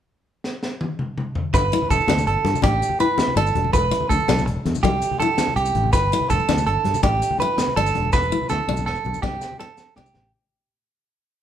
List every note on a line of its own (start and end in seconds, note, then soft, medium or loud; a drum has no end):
0.44 snare medium
0.63 snare medium
0.81 high tom medium
0.99 mid tom medium
1.18 mid tom medium
1.35 floor tom medium
1.54 1.71 G1 medium
1.54 1.89 B4 medium
1.54 kick medium
1.54 closed hi-hat medium
1.54 muted conga medium
1.54 low conga soft
1.54 maracas medium
1.72 1.92 E4 medium
1.72 closed hi-hat soft
1.82 low conga medium
1.90 1.99 E1 medium
1.90 2.25 A4 medium
1.90 kick medium
1.90 closed hi-hat soft
1.90 high conga medium
1.90 maracas medium
2.00 low conga soft
2.07 2.25 D2 medium
2.07 2.28 D4 medium
2.07 snare medium
2.07 closed hi-hat medium
2.07 muted conga medium
2.18 low conga medium
2.18 maracas medium
2.26 2.35 G1 medium
2.26 2.62 A4 medium
2.26 closed hi-hat soft
2.26 low conga soft
2.44 2.54 G2 medium
2.44 snare soft
2.44 closed hi-hat medium
2.44 high conga medium
2.54 low conga medium
2.54 maracas medium
2.62 2.81 A1 medium
2.62 2.82 D4 medium
2.62 2.98 G4 medium
2.62 kick medium
2.62 closed hi-hat medium
2.62 muted conga medium
2.62 low conga soft
2.81 closed hi-hat soft
2.81 low conga soft
2.81 maracas medium
2.89 low conga medium
3.00 3.19 E4 medium
3.00 3.35 B4 medium
3.00 closed hi-hat medium
3.18 snare medium
3.18 closed hi-hat medium
3.18 muted conga medium
3.18 maracas medium
3.28 low conga medium
3.36 3.54 G1 medium
3.36 3.56 D4 medium
3.36 3.72 A4 medium
3.36 closed hi-hat soft
3.36 maracas soft
3.47 maracas medium
3.55 3.73 E1 medium
3.55 closed hi-hat soft
3.55 high conga medium
3.55 low conga soft
3.64 low conga medium
3.73 3.91 E1 loud
3.73 4.08 B4 medium
3.73 kick medium
3.73 closed hi-hat medium
3.73 muted conga medium
3.73 low conga soft
3.73 maracas medium
3.91 4.10 E4 medium
3.91 closed hi-hat medium
4.00 low conga medium
4.09 4.19 D2 medium
4.09 4.45 A4 medium
4.09 kick medium
4.09 closed hi-hat soft
4.09 high conga medium
4.09 maracas medium
4.19 low conga soft
4.28 4.46 B1 medium
4.28 4.48 D4 medium
4.28 snare loud
4.28 closed hi-hat medium
4.28 muted conga medium
4.38 low conga medium
4.38 maracas medium
4.46 4.56 E1 medium
4.46 muted clean electric guitar stroke medium
4.46 closed hi-hat soft
4.46 low conga soft
4.57 low conga soft
4.65 4.74 E2 medium
4.65 snare soft
4.65 closed hi-hat soft
4.65 high conga medium
4.75 low conga medium
4.75 maracas medium
4.83 5.01 C2 medium
4.83 5.03 G3 medium
4.83 5.18 G4 medium
4.83 kick medium
4.83 closed hi-hat medium
4.83 muted conga medium
4.83 low conga soft
5.02 closed hi-hat medium
5.02 low conga soft
5.02 maracas medium
5.11 low conga medium
5.20 5.40 E4 medium
5.20 5.55 A4 medium
5.20 closed hi-hat soft
5.20 high conga medium
5.38 snare medium
5.38 closed hi-hat medium
5.38 muted conga medium
5.38 maracas loud
5.48 low conga medium
5.56 5.74 C2 medium
5.56 5.91 G4 medium
5.56 closed hi-hat medium
5.56 maracas soft
5.66 maracas medium
5.75 5.92 A1 medium
5.75 closed hi-hat soft
5.75 high conga medium
5.75 low conga soft
5.84 low conga medium
5.93 6.11 G1 medium
5.93 6.28 B4 medium
5.93 kick medium
5.93 closed hi-hat medium
5.93 muted conga medium
5.93 low conga soft
5.93 maracas loud
6.12 6.32 E4 medium
6.12 closed hi-hat medium
6.21 low conga medium
6.30 6.39 E1 medium
6.30 6.65 A4 medium
6.30 kick medium
6.30 closed hi-hat soft
6.30 high conga medium
6.30 maracas medium
6.49 6.66 D2 medium
6.49 6.67 D4 medium
6.49 snare medium
6.49 closed hi-hat medium
6.49 muted conga medium
6.58 low conga medium
6.58 maracas medium
6.66 6.76 G1 medium
6.66 7.02 A4 medium
6.66 closed hi-hat soft
6.66 low conga soft
6.84 6.94 G2 medium
6.84 snare soft
6.84 closed hi-hat soft
6.84 high conga medium
6.94 low conga medium
6.94 maracas medium
7.03 7.21 A1 medium
7.03 7.22 D4 medium
7.03 7.38 G4 medium
7.03 kick medium
7.03 closed hi-hat medium
7.03 muted conga medium
7.03 low conga soft
7.22 closed hi-hat soft
7.22 low conga soft
7.22 maracas medium
7.31 low conga medium
7.39 7.60 E4 medium
7.39 7.75 B4 medium
7.39 closed hi-hat soft
7.39 high conga medium
7.58 snare medium
7.58 closed hi-hat medium
7.58 muted conga medium
7.58 maracas medium
7.68 low conga medium
7.76 7.94 G1 medium
7.76 7.96 D4 medium
7.76 8.11 A4 medium
7.76 closed hi-hat soft
7.76 maracas soft
7.86 maracas medium
7.95 8.13 E1 medium
7.95 closed hi-hat soft
7.95 high conga medium
7.95 low conga soft
8.05 low conga medium
8.13 8.31 E1 medium
8.13 8.48 B4 medium
8.13 kick medium
8.13 snare soft
8.13 muted conga medium
8.13 low conga soft
8.13 maracas medium
8.24 low conga soft
8.32 8.51 E4 medium
8.32 maracas soft
8.41 low conga medium
8.49 8.59 D2 medium
8.49 8.85 A4 medium
8.49 snare soft
8.49 high conga medium
8.49 low conga soft
8.49 maracas medium
8.60 low conga soft
8.68 8.85 B1 medium
8.68 8.87 D4 medium
8.68 muted conga medium
8.68 low conga soft
8.77 low conga medium
8.77 maracas medium
8.86 8.95 E1 medium
8.86 9.21 A4 medium
8.86 snare medium
8.96 maracas soft
9.05 9.14 B1 medium
9.05 high conga medium
9.05 maracas soft
9.14 low conga medium
9.14 maracas medium
9.22 9.41 C2 medium
9.22 9.42 D4 medium
9.22 9.58 G4 medium
9.22 kick medium
9.22 snare medium
9.22 muted conga medium
9.41 snare medium
9.41 maracas medium
9.52 low conga medium
9.59 9.95 A4 medium
9.59 muted steel-string acoustic guitar stroke medium
9.59 snare medium
9.59 high conga soft
9.78 snare medium
9.78 high conga medium
9.78 maracas medium
9.96 10.14 C2 medium
9.96 10.16 D4 medium
9.96 10.31 G4 medium
9.96 snare medium
9.96 low conga medium
10.06 maracas medium
10.14 10.32 A1 medium
10.14 snare medium
10.14 low conga medium